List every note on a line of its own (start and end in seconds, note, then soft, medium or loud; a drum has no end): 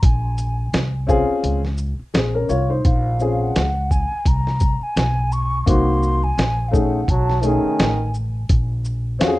0.03 0.70 A#1 medium
0.03 0.74 G#5 medium
0.03 kick loud
0.03 closed hi-hat medium
0.38 closed hi-hat soft
0.38 shaker soft
0.73 1.26 C2 medium
0.73 snare loud
0.73 closed hi-hat medium
1.07 1.59 C4 medium
1.07 1.59 C#4 medium
1.07 1.60 F4 medium
1.07 1.60 G#4 medium
1.07 kick medium
1.07 shaker soft
1.29 muted upright bass stroke soft
1.43 1.96 C#2 medium
1.43 closed hi-hat medium
1.65 snare soft
1.78 shaker soft
1.99 muted upright bass stroke soft
2.14 2.48 A#1 medium
2.14 2.34 C4 soft
2.14 2.33 G#4 medium
2.14 snare loud
2.14 closed hi-hat medium
2.35 2.49 C#4 medium
2.35 2.49 A#4 medium
2.49 2.83 C2 medium
2.49 2.69 F4 medium
2.49 2.68 C#5 medium
2.49 shaker soft
2.70 3.04 D#4 medium
2.70 3.03 C5 medium
2.85 3.52 A#1 loud
2.85 3.43 F5 medium
2.85 kick loud
2.85 closed hi-hat medium
3.19 3.63 C4 medium
3.19 3.63 C#4 medium
3.19 3.64 F4 medium
3.19 3.64 G#4 medium
3.19 shaker soft
3.42 3.93 F#5 medium
3.56 4.08 C#2 medium
3.56 snare loud
3.56 closed hi-hat medium
3.91 4.29 G#5 medium
3.91 kick medium
3.91 shaker soft
4.11 muted upright bass stroke soft
4.26 4.78 C2 medium
4.26 4.85 A#5 loud
4.26 kick medium
4.26 closed hi-hat medium
4.47 snare soft
4.60 kick medium
4.60 closed hi-hat soft
4.60 shaker soft
4.81 5.34 G#5 medium
4.81 muted upright bass stroke soft
4.96 5.63 B1 medium
4.96 snare loud
4.96 closed hi-hat medium
5.32 5.67 C#6 loud
5.32 shaker soft
5.66 6.34 C2 medium
5.66 6.18 A#3 medium
5.66 6.18 C4 medium
5.66 6.19 D#4 medium
5.66 6.19 F#4 medium
5.66 6.25 C6 loud
5.66 kick loud
5.66 closed hi-hat loud
6.03 shaker soft
6.24 6.70 G#5 loud
6.38 7.05 A#1 medium
6.38 snare medium
6.38 closed hi-hat medium
6.69 6.98 A3 medium
6.69 6.99 C#4 medium
6.69 6.76 F5 medium
6.73 6.99 D#4 medium
6.73 7.00 G#4 medium
6.73 7.11 F#5 medium
6.73 kick medium
6.73 shaker soft
7.08 7.61 B1 medium
7.08 7.45 F#3 medium
7.08 7.48 A5 medium
7.08 kick medium
7.08 closed hi-hat medium
7.30 snare soft
7.42 8.14 D#3 medium
7.42 7.86 A3 medium
7.42 7.87 C#4 medium
7.42 7.87 D#4 medium
7.42 7.88 G#4 medium
7.42 closed hi-hat soft
7.42 shaker soft
7.46 8.15 G#5 medium
7.64 muted upright bass stroke soft
7.79 8.46 A1 medium
7.79 snare loud
7.79 closed hi-hat medium
8.14 shaker soft
8.49 9.17 A#1 loud
8.49 kick loud
8.49 closed hi-hat medium
8.85 shaker medium
9.19 9.39 F2 medium
9.19 9.39 C4 medium
9.19 9.39 C#4 medium
9.19 9.39 F4 medium
9.19 9.28 F#4 medium
9.19 snare loud
9.19 closed hi-hat medium
9.28 9.39 G#4 medium